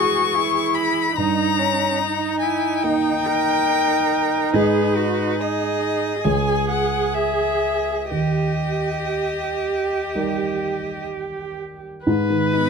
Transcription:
Already playing: E2 G#3 E4 F#4 G#4 B4 C#6
0.34 E4
0.75 B5
1.16 G2 D#4 A#5
1.59 C#4
1.99 D#4
2.40 E4 G#5
2.82 A#3 D#4 D#5 G5
3.26 A#4
4.53 G#2 G#3 G#4 B4 D#5
4.97 F#4
5.40 G#4 D#5
6.23 C#2 G#3 G#4 C#5 G#5
6.70 F#5
7.14 E5
8.10 D#2 G4 D#5
10.15 G3 D#4 A#4
12.04 G#2 B4
12.30 D#3
12.53 B3 D#4 B5

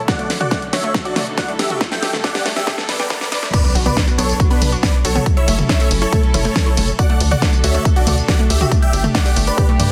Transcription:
Already playing: riser
0.08 D2 D3 F#4 A4 D5 F#5, kick, snare, closed hi-hat
0.19 A3, closed hi-hat
0.30 snare, open hi-hat
0.41 F#4 D5 F#5, closed hi-hat, mid tom
0.51 A3, kick, snare, closed hi-hat
0.62 closed hi-hat
0.73 F#4 C#5 E5, snare, open hi-hat
0.84 A3, closed hi-hat
0.94 kick, snare, closed hi-hat
1.05 F#4 D5, closed hi-hat
1.16 A3, snare, open hi-hat, mid tom
1.27 closed hi-hat
1.38 F#4 D5 F#5, kick, snare, closed hi-hat
1.48 A3, closed hi-hat
1.59 G4 E5, snare, open hi-hat
1.70 F#4, closed hi-hat, mid tom
1.81 G2 G3 A3 D4, kick, snare, closed hi-hat
1.91 E5 G5, snare, closed hi-hat
2.02 G4, snare, open hi-hat
2.13 A3, snare, closed hi-hat, mid tom
2.24 D5 F#5, kick, snare, closed hi-hat
2.35 G4, snare, open hi-hat
2.46 A3, snare, open hi-hat
2.56 G4 E5, snare, closed hi-hat
2.67 G4, kick, snare, closed hi-hat, mid tom, swell
2.78 A3, snare, closed hi-hat
2.89 B4 D5, snare, open hi-hat, mid tom
3.00 G5, snare, closed hi-hat
3.10 A3, kick, snare, closed hi-hat
3.21 snare, closed hi-hat
3.32 D5, snare, open hi-hat, mid tom
3.43 A3, snare, closed hi-hat
3.53 F#3 B3 D4 B4 D5, kick, closed hi-hat, crash, tambourine, impact
3.65 closed hi-hat
3.75 B1 F#4, open hi-hat, ride, tambourine
3.86 B3 B4 D5, closed hi-hat, mid tom, tambourine
3.97 kick, snare, closed hi-hat, tambourine
4.08 F#4, closed hi-hat, tambourine
4.18 B1 B3 A4 C#5, open hi-hat, ride, tambourine
4.29 closed hi-hat, tambourine
4.40 F#4, kick, closed hi-hat, tambourine
4.50 B3 D4 B4, closed hi-hat
4.61 B1, open hi-hat, mid tom, ride, tambourine
4.72 F#4, closed hi-hat, tambourine
4.83 B3 B4 D5, kick, snare, closed hi-hat, tambourine
4.94 closed hi-hat
5.05 B1 F#4 A4 C#5, open hi-hat, ride, tambourine
5.15 B3, closed hi-hat, mid tom, tambourine
5.26 C#4 E4 A4, kick, closed hi-hat, tambourine
5.37 E4 C#5 E5, closed hi-hat
5.48 F#1 A3, open hi-hat, ride, tambourine
5.59 closed hi-hat, mid tom, tambourine
5.69 E4 C#5 E5, kick, snare, closed hi-hat, tambourine
5.80 A3, open hi-hat, tambourine
5.91 F#1, open hi-hat, ride, tambourine
6.02 E4 A4 C#5, closed hi-hat, tambourine
6.13 A3, kick, closed hi-hat, mid tom, tambourine
6.23 closed hi-hat
6.34 F#1 E4 A4 C#5, open hi-hat, mid tom, ride, tambourine
6.45 A3, closed hi-hat, tambourine
6.56 kick, snare, closed hi-hat, tambourine
6.66 E4, closed hi-hat
6.77 F#1 A3, open hi-hat, mid tom, ride, tambourine
6.88 closed hi-hat, tambourine
6.99 D3 D4 F#4 A4 D5 F#5, kick, closed hi-hat, tambourine
7.10 A3, closed hi-hat
7.20 D2, open hi-hat, ride, tambourine
7.31 F#4 D5 F#5, closed hi-hat, mid tom, tambourine
7.42 A3, kick, snare, closed hi-hat, tambourine
7.53 closed hi-hat, tambourine
7.64 D2 F#4 C#5 E5, open hi-hat, ride, tambourine
7.75 A3, closed hi-hat, tambourine
7.85 kick, closed hi-hat, tambourine
7.96 F#4 D5, closed hi-hat
8.07 D2 A3, open hi-hat, mid tom, ride, tambourine
8.18 closed hi-hat, tambourine
8.28 F#4 D5 F#5, kick, snare, closed hi-hat, tambourine
8.39 A3, closed hi-hat
8.50 D2 G4 E5, open hi-hat, ride, tambourine
8.61 F#4, closed hi-hat, mid tom, tambourine
8.72 A3 G4, kick, closed hi-hat, tambourine
8.82 E5 G5, closed hi-hat
8.93 G1 G4, open hi-hat, ride, tambourine
9.04 A3, closed hi-hat, mid tom, tambourine
9.15 D5 F#5, kick, snare, closed hi-hat, tambourine
9.25 G4, open hi-hat, tambourine
9.36 G1 A3, open hi-hat, ride, tambourine
9.47 B4 D5, closed hi-hat, tambourine
9.58 G4, kick, closed hi-hat, mid tom, tambourine
9.69 A3, closed hi-hat
9.79 G2 B4 D5, open hi-hat, mid tom, ride, tambourine

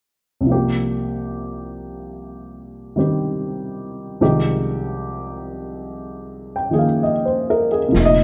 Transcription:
0.41 C2 C3
0.46 F3 A#3
0.52 G4
2.96 D#3 G3 C4 G4
4.21 C2 C3 D#3 F3 G#3 G4
6.56 G5
6.71 D#3 F3 A#3 G#4
6.79 F5
7.03 D#5
7.25 C5
7.50 A#4
7.72 G#4
7.88 C3 F3
7.94 F1 A#2, brush sweep, snare
7.99 D#4
8.05 D#5

